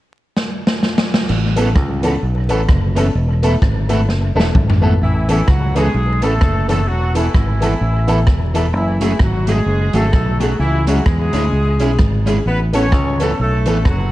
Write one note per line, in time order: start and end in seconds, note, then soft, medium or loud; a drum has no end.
0.36 snare medium
0.67 snare medium
0.83 snare medium
0.98 snare medium
1.14 snare medium
1.29 1.76 A1 loud
1.29 crash medium
1.56 1.67 E3 medium
1.56 1.71 B3 medium
1.56 1.68 B3 medium
1.56 1.71 C#4 medium
1.56 1.68 C#4 medium
1.56 1.71 A4 medium
1.56 1.68 A4 medium
1.56 closed hi-hat medium
1.75 2.16 C#2 medium
1.75 1.82 C#4 soft
1.75 1.81 A4 soft
1.75 kick loud
1.75 cross-stick loud
2.03 2.14 E3 medium
2.03 2.17 B3 medium
2.03 2.14 B3 medium
2.03 2.18 C#4 medium
2.03 2.14 C#4 medium
2.03 2.18 A4 loud
2.03 2.14 A4 medium
2.03 closed hi-hat medium
2.23 2.50 B1 medium
2.49 2.66 A1 medium
2.49 2.60 E3 medium
2.49 2.64 B3 medium
2.49 2.60 B3 medium
2.49 2.64 C#4 medium
2.49 2.61 C#4 medium
2.49 2.64 A4 loud
2.49 2.61 A4 medium
2.49 closed hi-hat medium
2.69 3.09 F#1 medium
2.69 kick loud
2.69 cross-stick loud
2.95 3.06 E3 medium
2.95 3.11 B3 medium
2.95 3.07 B3 medium
2.95 3.11 C#4 medium
2.95 3.07 C#4 medium
2.95 3.11 A4 loud
2.95 3.07 A4 medium
2.95 closed hi-hat medium
3.15 3.55 E1 loud
3.42 3.53 A3 medium
3.42 3.57 B3 medium
3.42 3.53 B3 medium
3.42 3.57 E4 medium
3.42 3.54 E4 medium
3.42 3.58 A4 medium
3.42 3.54 A4 medium
3.42 closed hi-hat medium
3.61 4.08 G#1 medium
3.61 3.67 E4 soft
3.61 3.67 A4 soft
3.61 kick loud
3.61 cross-stick loud
3.89 4.00 A3 medium
3.89 4.03 B3 medium
3.89 4.00 B3 medium
3.89 4.04 E4 medium
3.89 4.00 E4 medium
3.89 4.04 A4 loud
3.89 4.00 A4 medium
3.89 closed hi-hat medium
4.08 4.32 F#1 loud
4.08 snare medium
4.35 4.52 E1 medium
4.35 4.46 A3 medium
4.35 4.50 B3 medium
4.35 4.46 B3 medium
4.35 4.50 E4 medium
4.35 4.46 E4 medium
4.35 4.50 A4 loud
4.35 4.46 A4 medium
4.40 snare medium
4.55 4.95 G#1 medium
4.55 4.60 E4 soft
4.55 4.60 A4 soft
4.55 kick loud
4.55 mid tom medium
4.70 floor tom medium
4.81 4.92 A3 medium
4.81 4.96 B3 medium
4.81 4.92 B3 medium
4.81 4.97 E4 medium
4.81 4.93 E4 medium
4.81 4.97 A4 loud
4.81 4.93 A4 medium
5.02 5.41 A1 loud
5.02 5.28 E3 medium
5.02 5.28 E4 medium
5.28 5.39 E3 medium
5.28 5.47 E3 medium
5.28 5.43 B3 medium
5.28 5.40 B3 medium
5.28 5.43 C#4 medium
5.28 5.40 C#4 medium
5.28 5.47 E4 medium
5.28 5.44 A4 loud
5.28 5.40 A4 medium
5.28 closed hi-hat medium
5.48 5.88 C#2 medium
5.48 5.76 F#3 medium
5.48 5.76 F#4 medium
5.48 muted clean electric guitar stroke soft
5.48 kick loud
5.48 cross-stick loud
5.75 5.86 E3 medium
5.75 6.19 G#3 medium
5.75 5.90 B3 medium
5.75 5.86 B3 medium
5.75 5.90 C#4 medium
5.75 5.86 C#4 medium
5.75 6.19 G#4 medium
5.75 5.90 A4 medium
5.75 5.87 A4 medium
5.75 closed hi-hat medium
5.94 6.22 B1 medium
6.22 6.38 A1 medium
6.22 6.32 E3 medium
6.22 6.67 A3 loud
6.22 6.37 B3 medium
6.22 6.33 B3 medium
6.22 6.37 C#4 medium
6.22 6.33 C#4 medium
6.22 6.67 A4 loud
6.22 6.37 A4 loud
6.22 6.33 A4 medium
6.22 closed hi-hat medium
6.41 6.88 F#1 medium
6.41 6.47 C#4 soft
6.41 6.47 A4 soft
6.41 kick loud
6.41 cross-stick loud
6.68 6.79 E3 medium
6.68 6.86 A3 medium
6.68 6.83 B3 medium
6.68 6.79 B3 medium
6.68 6.83 C#4 medium
6.68 6.79 C#4 medium
6.68 6.86 A4 medium
6.68 6.83 A4 loud
6.68 6.80 A4 medium
6.68 closed hi-hat medium
6.87 7.28 E1 loud
6.87 7.15 F#3 medium
6.87 7.15 F#4 loud
7.14 7.25 E3 medium
7.14 7.33 E3 medium
7.14 7.29 B3 medium
7.14 7.25 B3 medium
7.14 7.30 E4 medium
7.14 7.25 E4 medium
7.14 7.33 E4 medium
7.14 7.30 A4 medium
7.14 7.26 A4 medium
7.14 closed hi-hat medium
7.34 7.74 G#1 medium
7.34 8.51 E3 medium
7.34 8.51 E4 medium
7.34 muted clean electric guitar stroke soft
7.34 kick loud
7.34 cross-stick loud
7.61 7.72 E3 medium
7.61 7.75 B3 medium
7.61 7.72 B3 medium
7.61 7.76 E4 medium
7.61 7.73 E4 medium
7.61 7.76 A4 loud
7.61 7.73 A4 medium
7.61 closed hi-hat medium
7.81 8.28 A1 medium
8.07 8.18 E3 medium
8.07 8.22 B3 medium
8.07 8.18 B3 medium
8.07 8.22 E4 medium
8.07 8.18 E4 medium
8.07 8.19 A4 medium
8.07 8.23 A4 loud
8.07 closed hi-hat medium
8.27 8.73 E1 medium
8.27 kick loud
8.27 cross-stick loud
8.54 8.65 E3 medium
8.54 8.69 B3 medium
8.54 8.65 B3 medium
8.54 8.69 E4 medium
8.54 8.66 E4 medium
8.54 8.69 A4 loud
8.54 8.66 A4 medium
8.54 closed hi-hat medium
8.73 9.13 F#1 loud
8.73 9.00 E3 medium
8.73 9.00 E4 medium
9.01 9.20 E3 medium
9.01 9.11 F#3 medium
9.01 9.15 A3 medium
9.01 9.11 A3 medium
9.01 9.11 C#4 medium
9.01 9.20 E4 medium
9.01 9.15 F#4 medium
9.01 9.12 G#4 medium
9.01 9.16 G#4 medium
9.01 closed hi-hat medium
9.19 9.59 G#1 medium
9.19 9.47 F#3 medium
9.19 9.47 F#4 medium
9.19 muted clean electric guitar stroke soft
9.19 kick loud
9.19 cross-stick loud
9.47 9.58 F#3 medium
9.47 9.94 G#3 loud
9.47 9.61 A3 medium
9.47 9.58 A3 medium
9.47 9.58 C#4 medium
9.47 9.62 F#4 medium
9.47 9.94 G#4 loud
9.47 9.62 G#4 medium
9.47 9.58 G#4 medium
9.47 closed hi-hat medium
9.66 9.90 F#1 medium
9.93 10.10 G#1 medium
9.93 10.04 F#3 medium
9.93 10.08 A3 medium
9.93 10.04 A3 medium
9.93 10.41 A3 medium
9.93 10.05 C#4 medium
9.93 10.08 F#4 medium
9.93 10.09 G#4 medium
9.93 10.05 G#4 medium
9.93 10.41 A4 loud
9.93 closed hi-hat medium
10.13 10.53 B1 medium
10.13 10.19 F#4 soft
10.13 10.19 G#4 soft
10.13 kick loud
10.13 cross-stick loud
10.40 10.59 F#3 medium
10.40 10.51 F#3 medium
10.40 10.54 A3 medium
10.40 10.51 A3 medium
10.40 10.51 C#4 medium
10.40 10.59 F#4 medium
10.40 10.55 F#4 medium
10.40 10.55 G#4 loud
10.40 10.52 G#4 medium
10.40 closed hi-hat medium
10.59 10.99 C#2 loud
10.59 10.85 E3 medium
10.59 10.85 E4 loud
10.87 11.05 F#3 medium
10.87 10.97 G#3 medium
10.87 11.01 C#4 medium
10.87 10.98 C#4 medium
10.87 11.02 E4 medium
10.87 10.98 E4 medium
10.87 11.05 F#4 medium
10.87 11.02 G#4 medium
10.87 10.98 G#4 medium
10.87 closed hi-hat medium
11.06 11.29 E2 medium
11.06 12.22 G#3 medium
11.06 12.22 G#4 loud
11.06 muted clean electric guitar stroke soft
11.06 kick loud
11.06 cross-stick loud
11.33 11.50 D2 medium
11.33 11.43 G#3 medium
11.33 11.43 C#4 medium
11.33 11.48 C#4 medium
11.33 11.44 E4 medium
11.33 11.48 E4 medium
11.33 11.44 G#4 medium
11.33 11.48 G#4 loud
11.33 closed hi-hat medium
11.52 11.80 C#2 medium
11.80 11.96 B1 medium
11.80 11.90 G#3 medium
11.80 11.94 C#4 medium
11.80 11.90 C#4 medium
11.80 11.95 E4 medium
11.80 11.91 E4 medium
11.80 11.91 G#4 medium
11.80 11.95 G#4 loud
11.80 closed hi-hat medium
11.99 12.39 G#1 medium
11.99 kick loud
11.99 cross-stick loud
12.26 12.37 G#3 medium
12.26 12.41 C#4 medium
12.26 12.37 C#4 medium
12.26 12.41 E4 medium
12.26 12.37 E4 medium
12.26 12.41 G#4 loud
12.26 12.37 G#4 medium
12.26 closed hi-hat medium
12.46 12.92 A1 loud
12.46 12.59 B3 loud
12.46 12.59 B4 loud
12.73 12.83 E3 medium
12.73 12.87 B3 medium
12.73 12.84 B3 medium
12.73 12.87 C#4 medium
12.73 12.84 C#4 medium
12.73 13.17 C#4 loud
12.73 12.88 A4 medium
12.73 12.84 A4 medium
12.73 13.17 C#5 loud
12.73 closed hi-hat medium
12.92 13.32 C#2 medium
12.92 muted clean electric guitar stroke soft
12.92 kick loud
12.92 cross-stick loud
13.20 13.30 E3 medium
13.20 13.40 A3 medium
13.20 13.34 B3 medium
13.20 13.31 B3 medium
13.20 13.34 C#4 medium
13.20 13.31 C#4 medium
13.20 13.35 A4 loud
13.20 13.40 A4 medium
13.20 13.31 A4 medium
13.20 closed hi-hat medium
13.39 13.67 B1 medium
13.39 13.83 A3 medium
13.39 13.83 A4 loud
13.66 13.83 A1 medium
13.66 13.76 E3 medium
13.66 13.81 B3 medium
13.66 13.77 B3 medium
13.66 13.81 C#4 medium
13.66 13.77 C#4 medium
13.66 13.81 A4 medium
13.66 13.77 A4 medium
13.66 closed hi-hat medium
13.85 14.12 F#1 medium
13.85 14.12 F#3 medium
13.85 13.91 C#4 soft
13.85 14.12 F#4 medium
13.85 13.91 A4 soft
13.85 kick loud
13.85 cross-stick loud